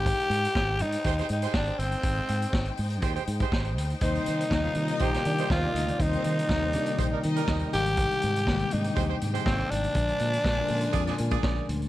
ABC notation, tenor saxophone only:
X:1
M:4/4
L:1/8
Q:1/4=121
K:Ablyd
V:1 name="Tenor saxophone"
G3 E2 E D C- | C3 z4 z | E4 G2 F2 | E6 z G- |
G3 E2 z C D- | D6 z2 |]